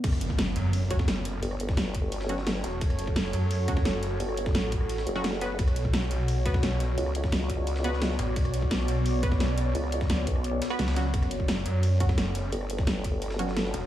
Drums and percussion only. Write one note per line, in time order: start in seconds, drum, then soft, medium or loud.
0.04 kick loud
0.04 closed hi-hat medium
0.04 crash loud
0.04 ride medium
0.13 cross-stick soft
0.13 ride soft
0.21 closed hi-hat loud
0.21 ride medium
0.30 kick medium
0.39 snare loud
0.39 closed hi-hat medium
0.39 ride medium
0.47 snare soft
0.56 closed hi-hat medium
0.56 ride medium
0.73 closed hi-hat medium
0.73 open hi-hat medium
0.91 kick loud
0.91 closed hi-hat loud
0.91 ride medium
0.99 kick loud
0.99 snare soft
1.08 snare loud
1.08 closed hi-hat medium
1.08 ride medium
1.25 snare soft
1.25 closed hi-hat loud
1.25 ride medium
1.43 closed hi-hat medium
1.43 ride medium
1.51 cross-stick soft
1.60 closed hi-hat medium
1.60 ride medium
1.69 kick loud
1.69 snare soft
1.77 snare loud
1.77 closed hi-hat medium
1.77 ride medium
1.95 kick medium
1.95 closed hi-hat loud
1.95 ride medium
2.12 closed hi-hat medium
2.12 ride medium
2.21 snare medium
2.29 closed hi-hat loud
2.29 ride medium
2.38 snare soft
2.47 snare loud
2.47 closed hi-hat medium
2.47 ride medium
2.55 snare medium
2.64 snare soft
2.64 closed hi-hat medium
2.64 ride medium
2.81 kick loud
2.81 closed hi-hat medium
2.81 ride medium
2.90 cross-stick soft
2.90 ride soft
2.99 closed hi-hat medium
2.99 ride medium
3.07 kick medium
3.16 snare loud
3.16 closed hi-hat medium
3.16 ride medium
3.25 snare soft
3.33 closed hi-hat medium
3.33 ride medium
3.51 closed hi-hat medium
3.51 open hi-hat medium
3.68 kick loud
3.68 closed hi-hat medium
3.68 ride medium
3.77 kick loud
3.77 snare soft
3.85 snare loud
3.85 closed hi-hat medium
3.85 ride medium
4.03 snare soft
4.03 closed hi-hat medium
4.03 ride medium
4.20 closed hi-hat medium
4.20 ride medium
4.29 cross-stick soft
4.37 closed hi-hat medium
4.37 ride medium
4.46 kick loud
4.46 snare soft
4.55 snare loud
4.55 closed hi-hat medium
4.55 ride medium
4.72 kick medium
4.72 closed hi-hat medium
4.72 ride medium
4.81 cross-stick soft
4.89 closed hi-hat medium
4.89 ride medium
4.98 snare medium
5.07 closed hi-hat medium
5.07 ride medium
5.16 snare soft
5.24 snare loud
5.24 closed hi-hat medium
5.24 ride medium
5.33 snare medium
5.41 snare soft
5.41 closed hi-hat medium
5.41 ride medium
5.59 kick loud
5.59 closed hi-hat medium
5.59 ride medium
5.67 cross-stick soft
5.67 ride soft
5.76 closed hi-hat medium
5.76 ride medium
5.85 kick medium
5.93 snare loud
5.93 closed hi-hat medium
5.93 ride medium
6.02 snare soft
6.11 closed hi-hat medium
6.11 ride medium
6.28 closed hi-hat medium
6.28 open hi-hat medium
6.46 kick loud
6.46 closed hi-hat medium
6.46 ride medium
6.54 kick loud
6.54 snare soft
6.63 snare loud
6.63 closed hi-hat medium
6.63 ride medium
6.80 snare soft
6.80 closed hi-hat medium
6.80 ride medium
6.98 closed hi-hat medium
6.98 ride medium
7.06 cross-stick soft
7.15 closed hi-hat medium
7.15 ride medium
7.24 kick medium
7.24 snare soft
7.32 snare loud
7.32 closed hi-hat medium
7.32 ride medium
7.50 kick medium
7.50 closed hi-hat medium
7.50 ride medium
7.67 closed hi-hat medium
7.67 ride medium
7.76 snare medium
7.84 closed hi-hat loud
7.84 ride medium
7.93 snare soft
8.02 snare loud
8.02 closed hi-hat medium
8.02 ride medium
8.10 snare medium
8.19 snare soft
8.19 closed hi-hat loud
8.19 ride medium
8.36 kick loud
8.36 closed hi-hat medium
8.36 ride medium
8.45 cross-stick soft
8.45 ride soft
8.54 closed hi-hat loud
8.54 ride medium
8.62 kick medium
8.71 snare loud
8.71 closed hi-hat medium
8.71 ride medium
8.80 snare soft
8.88 closed hi-hat medium
8.88 ride medium
9.06 closed hi-hat medium
9.06 open hi-hat medium
9.23 kick loud
9.23 closed hi-hat loud
9.23 ride medium
9.32 kick medium
9.32 snare soft
9.40 snare loud
9.40 closed hi-hat medium
9.40 ride medium
9.58 snare soft
9.58 closed hi-hat loud
9.58 ride medium
9.75 closed hi-hat medium
9.75 ride medium
9.84 cross-stick soft
9.92 closed hi-hat loud
9.92 ride medium
10.01 kick loud
10.01 snare soft
10.10 snare loud
10.10 closed hi-hat medium
10.10 ride medium
10.27 kick medium
10.27 closed hi-hat loud
10.27 ride medium
10.36 cross-stick soft
10.44 closed hi-hat medium
10.62 snare loud
10.62 closed hi-hat loud
10.62 ride medium
10.70 snare soft
10.79 snare loud
10.79 closed hi-hat medium
10.79 ride medium
10.88 snare loud
10.88 ride medium
10.96 snare loud
10.96 closed hi-hat loud
10.96 ride medium
11.14 kick loud
11.14 closed hi-hat medium
11.14 ride medium
11.22 cross-stick soft
11.22 ride soft
11.31 closed hi-hat loud
11.31 ride medium
11.40 kick medium
11.48 snare loud
11.48 closed hi-hat medium
11.48 ride medium
11.57 snare soft
11.66 closed hi-hat loud
11.66 ride medium
11.83 closed hi-hat medium
11.83 open hi-hat medium
12.00 kick loud
12.00 closed hi-hat loud
12.00 ride medium
12.09 kick loud
12.09 snare soft
12.18 snare loud
12.18 closed hi-hat medium
12.18 ride medium
12.35 snare soft
12.35 closed hi-hat loud
12.35 ride medium
12.52 closed hi-hat medium
12.52 ride medium
12.61 cross-stick soft
12.70 closed hi-hat medium
12.70 ride medium
12.78 kick loud
12.78 snare soft
12.87 snare loud
12.87 closed hi-hat medium
12.87 ride medium
13.04 kick medium
13.04 closed hi-hat medium
13.04 ride medium
13.22 closed hi-hat medium
13.22 ride medium
13.31 snare medium
13.39 closed hi-hat loud
13.39 ride medium
13.48 snare soft
13.57 snare loud
13.57 closed hi-hat medium
13.57 ride medium
13.65 snare soft
13.74 snare soft
13.74 closed hi-hat loud
13.74 ride medium